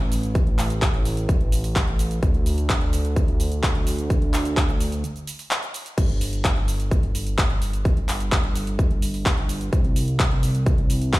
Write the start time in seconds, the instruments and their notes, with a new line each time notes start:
Already playing: analog synth bass A1
0.12 open hi-hat, shaker
0.23 closed hi-hat, shaker
0.35 kick, closed hi-hat, shaker
0.47 closed hi-hat
0.59 clap, open hi-hat, shaker
0.70 closed hi-hat, shaker
0.82 kick, clap, closed hi-hat, shaker
0.94 closed hi-hat
1.05 open hi-hat, shaker
1.17 closed hi-hat, shaker
1.29 kick, closed hi-hat, shaker
1.41 closed hi-hat
1.52 open hi-hat, shaker
1.64 open hi-hat, shaker
1.76 kick, clap, closed hi-hat, shaker
1.87 closed hi-hat
1.99 open hi-hat, shaker
2.11 closed hi-hat, shaker
2.23 analog synth bass D2, kick, closed hi-hat, shaker
2.34 closed hi-hat
2.46 open hi-hat, shaker
2.58 closed hi-hat, shaker
2.70 kick, clap, closed hi-hat, shaker
2.81 closed hi-hat
2.93 open hi-hat, shaker
3.05 closed hi-hat, shaker
3.16 kick, closed hi-hat, shaker
3.28 closed hi-hat
3.40 open hi-hat, shaker
3.52 closed hi-hat, shaker
3.63 kick, clap, closed hi-hat, shaker
3.75 closed hi-hat
3.87 open hi-hat, shaker
3.98 closed hi-hat, shaker
4.10 kick, closed hi-hat, shaker
4.22 closed hi-hat
4.34 clap, open hi-hat, shaker
4.45 closed hi-hat, shaker
4.57 kick, clap, closed hi-hat, shaker
4.69 closed hi-hat, shaker
4.80 open hi-hat, shaker
4.92 closed hi-hat, shaker
5.04 closed hi-hat, shaker
5.16 closed hi-hat, shaker
5.27 open hi-hat, shaker
5.39 open hi-hat, shaker
5.51 clap, closed hi-hat, shaker
5.63 closed hi-hat, shaker
5.74 open hi-hat, shaker
5.86 closed hi-hat, shaker
5.98 analog synth bass G1, kick, closed hi-hat, crash, shaker
6.09 closed hi-hat
6.21 open hi-hat, shaker
6.33 closed hi-hat, shaker
6.45 kick, clap, closed hi-hat, shaker
6.56 closed hi-hat
6.68 open hi-hat, shaker
6.80 closed hi-hat, shaker
6.91 kick, closed hi-hat, shaker
7.03 closed hi-hat
7.15 open hi-hat, shaker
7.27 closed hi-hat, shaker
7.38 kick, clap, closed hi-hat, shaker
7.50 closed hi-hat
7.62 open hi-hat, shaker
7.73 closed hi-hat, shaker
7.85 kick, closed hi-hat, shaker
7.97 closed hi-hat
8.09 clap, open hi-hat, shaker
8.20 closed hi-hat, shaker
8.32 kick, clap, closed hi-hat, shaker
8.44 closed hi-hat
8.55 open hi-hat, shaker
8.67 closed hi-hat, shaker
8.79 kick, closed hi-hat, shaker
8.91 closed hi-hat
9.02 open hi-hat, shaker
9.14 open hi-hat, shaker
9.26 kick, clap, closed hi-hat, shaker
9.38 closed hi-hat
9.49 open hi-hat, shaker
9.61 closed hi-hat, shaker
9.73 analog synth bass C2, kick, closed hi-hat, shaker
9.84 closed hi-hat
9.96 open hi-hat, shaker
10.08 closed hi-hat, shaker
10.20 kick, clap, closed hi-hat, shaker
10.31 closed hi-hat
10.43 open hi-hat, shaker
10.55 closed hi-hat, shaker
10.66 kick, closed hi-hat, shaker
10.78 closed hi-hat
10.90 open hi-hat, shaker
11.02 closed hi-hat, shaker
11.13 kick, clap, closed hi-hat, shaker